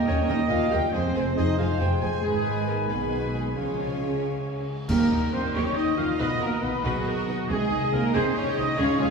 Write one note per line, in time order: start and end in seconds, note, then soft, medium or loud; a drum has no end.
0.00 0.25 D#3 loud
0.00 0.77 G3 loud
0.00 0.77 A#3 loud
0.00 0.77 D#5 loud
0.00 1.28 G5 loud
0.07 0.15 D#2 medium
0.07 0.16 D#2 medium
0.07 0.18 C#4 loud
0.07 0.15 G4 medium
0.07 0.15 A#4 medium
0.07 0.17 C#5 loud
0.07 0.29 C#5 loud
0.07 0.16 D#5 medium
0.29 0.37 D#2 loud
0.29 0.40 D#4 loud
0.29 0.37 G4 medium
0.29 0.37 A#4 medium
0.29 0.37 D#5 medium
0.29 0.49 D#5 loud
0.29 0.51 D#5 medium
0.49 0.58 D#2 medium
0.49 0.59 D#2 medium
0.49 0.71 F4 loud
0.49 0.58 G4 medium
0.49 0.58 A#4 medium
0.49 0.58 D#5 medium
0.49 0.74 F5 loud
0.49 0.72 F5 loud
0.71 0.80 D#2 medium
0.71 0.81 D#2 medium
0.71 0.81 G4 loud
0.71 0.80 G4 medium
0.71 0.80 A#4 medium
0.71 0.80 D#5 medium
0.71 0.94 G5 loud
0.92 1.02 F1 medium
0.92 1.02 F2 medium
0.92 2.22 F3 medium
0.92 3.52 G#3 medium
0.92 1.36 C4 loud
0.92 1.01 G#4 medium
0.92 1.36 C5 loud
0.92 1.01 C5 medium
0.92 2.21 C5 medium
0.92 1.37 C5 loud
0.92 1.01 G#5 medium
1.14 1.24 F1 medium
1.14 1.23 F2 medium
1.14 1.23 G#4 medium
1.14 1.23 C5 medium
1.14 1.23 G#5 medium
1.35 1.46 F1 medium
1.35 1.46 F2 medium
1.35 1.57 D#4 loud
1.35 1.45 G#4 medium
1.35 1.46 C5 medium
1.35 1.57 D#5 loud
1.35 1.59 D#5 loud
1.35 1.46 G#5 medium
1.58 1.67 F1 medium
1.58 1.67 F2 medium
1.58 1.80 F4 loud
1.58 1.66 G#4 medium
1.58 1.67 C5 medium
1.58 1.68 F5 medium
1.58 1.81 F5 medium
1.58 1.67 G#5 medium
1.58 3.52 G#5 loud
1.79 1.89 F1 medium
1.79 1.89 F2 medium
1.79 2.02 G4 loud
1.79 1.88 G#4 medium
1.79 1.89 C5 medium
1.79 2.01 G5 loud
1.79 2.02 G5 medium
1.79 1.89 G#5 medium
2.00 2.10 F1 medium
2.00 2.10 F2 medium
2.00 2.22 G#4 loud
2.00 2.10 G#4 medium
2.00 2.09 C5 medium
2.00 2.09 G#5 medium
2.00 2.12 G#5 loud
2.00 2.24 G#5 loud
2.22 2.85 G#1 medium
2.22 2.85 G#2 medium
2.22 3.56 D#3 medium
2.22 2.66 G#3 loud
2.22 2.85 G#4 medium
2.22 2.67 G#4 loud
2.22 2.66 G#4 medium
2.22 2.85 B4 medium
2.22 3.53 B4 medium
2.22 2.85 G#5 medium
2.67 2.77 A#3 loud
2.67 2.87 A#4 medium
2.67 2.76 A#4 medium
2.88 3.56 B1 medium
2.88 3.56 B2 medium
2.88 2.98 B3 medium
2.88 3.53 G#4 medium
2.88 3.10 B4 medium
2.88 3.54 B4 medium
2.88 2.98 B4 medium
2.88 3.54 G#5 medium
3.09 3.19 B3 medium
3.09 3.21 B4 medium
3.09 3.33 B4 medium
3.32 3.55 G#3 medium
3.32 3.55 G#4 medium
3.32 3.42 G#4 medium
3.54 4.69 C#2 medium
3.54 4.69 C#3 medium
3.54 4.65 C#3 medium
3.54 4.21 F3 medium
3.54 4.65 G#3 medium
3.54 4.21 F4 medium
3.54 4.66 G#4 medium
3.54 4.69 C#5 medium
3.54 4.65 C#5 medium
3.54 4.54 F5 medium
3.54 4.66 G#5 medium
4.88 4.98 D#2 medium
4.88 4.97 D#3 medium
4.88 5.51 D#3 loud
4.88 7.46 D#3 medium
4.88 6.16 G3 medium
4.88 5.29 A#3 loud
4.88 5.09 G4 medium
4.88 6.16 G4 medium
4.88 5.30 A#4 medium
4.88 5.30 A#4 loud
4.88 7.46 D#5 medium
4.88 5.30 A#5 medium
4.88 concert bass drum medium
4.88 crash medium
5.11 5.20 D#2 medium
5.11 5.19 D#3 medium
5.11 5.19 D#4 medium
5.32 5.41 D#2 medium
5.32 5.41 D#3 medium
5.32 5.41 A#3 medium
5.32 5.42 C4 loud
5.32 5.55 C5 medium
5.32 5.54 C6 medium
5.53 5.63 D#2 medium
5.53 5.63 D#3 medium
5.53 5.75 C#4 loud
5.53 5.75 G4 medium
5.53 5.76 C#5 loud
5.53 5.76 C#5 medium
5.53 5.78 C#6 medium
5.75 5.97 D#4 loud
5.75 5.98 D#5 medium
5.75 5.97 D#5 medium
5.75 5.86 D#5 medium
5.75 5.97 D#6 medium
5.97 6.07 D#2 medium
5.97 6.05 D#3 medium
5.97 6.06 A#3 medium
5.97 6.19 F4 loud
5.97 6.07 F5 medium
5.97 6.20 F5 medium
5.97 6.19 F5 medium
5.97 6.04 F6 medium
6.19 6.27 B1 medium
6.19 6.27 B2 medium
6.19 7.47 B3 medium
6.19 6.29 D#4 loud
6.19 6.83 F#4 medium
6.19 6.39 B4 medium
6.19 6.41 D#5 loud
6.19 6.43 D#5 loud
6.19 6.43 D#6 medium
6.40 6.49 B1 medium
6.40 6.49 B2 medium
6.40 6.50 A#3 loud
6.40 6.49 F#4 medium
6.40 6.50 A#4 loud
6.40 6.63 A#4 medium
6.40 6.65 A#5 loud
6.62 6.71 B1 medium
6.62 6.70 B2 medium
6.62 6.84 B3 loud
6.62 6.70 D#4 medium
6.62 6.84 B4 medium
6.62 6.86 B5 medium
6.83 6.92 B1 loud
6.83 6.92 B2 loud
6.83 7.50 F#3 loud
6.83 7.49 F#4 medium
6.83 7.48 F#4 medium
6.83 7.50 F#4 medium
6.83 7.06 G#4 medium
6.83 7.05 B4 medium
6.83 7.49 F#5 medium
7.06 7.28 A#4 medium
7.27 7.36 B1 medium
7.27 7.36 B2 medium
7.27 7.35 D#4 medium
7.27 7.36 B4 medium
7.48 7.57 C2 loud
7.48 7.57 C3 medium
7.48 8.76 D#3 medium
7.48 7.92 G#3 loud
7.48 9.10 G#3 medium
7.48 7.92 G#4 medium
7.48 7.92 G#4 loud
7.48 7.70 G#4 medium
7.48 7.92 G#4 loud
7.48 8.13 G#4 medium
7.48 8.76 D#5 medium
7.48 7.92 G#5 medium
7.70 7.80 C2 medium
7.70 7.79 C3 medium
7.70 7.78 D#4 medium
7.92 8.01 C2 medium
7.92 8.00 C3 medium
7.92 8.14 A#3 loud
7.92 8.00 C4 medium
7.92 8.14 A#4 medium
7.92 8.15 A#4 medium
7.92 8.16 A#5 medium
8.14 8.22 C2 loud
8.14 8.22 C3 loud
8.14 8.24 C4 loud
8.14 8.78 G4 loud
8.14 8.34 G#4 loud
8.14 8.34 C5 loud
8.14 8.24 C5 loud
8.14 8.23 C5 loud
8.14 8.38 C6 medium
8.35 8.46 C#4 loud
8.35 8.58 C#5 loud
8.35 8.57 C#5 loud
8.35 8.56 C#6 loud
8.56 8.66 C2 medium
8.56 8.65 C3 medium
8.56 8.65 C4 medium
8.56 8.78 D#4 loud
8.56 8.79 D#5 loud
8.56 8.78 D#5 loud
8.56 8.79 D#5 loud
8.56 8.78 D#6 loud
8.77 8.88 C#2 loud
8.77 8.87 C#3 loud
8.77 9.10 C#3 medium
8.77 8.99 C#4 loud
8.77 9.10 F4 loud
8.77 8.98 G#4 loud
8.77 8.99 C#5 loud
8.77 9.00 C#5 loud
8.77 9.10 F5 medium
8.77 8.99 C#6 loud
9.00 9.08 C#2 medium
9.00 9.08 C#3 medium
9.00 9.10 G#3 loud
9.00 9.08 F4 medium
9.00 9.10 G#4 loud
9.00 9.10 G#5 loud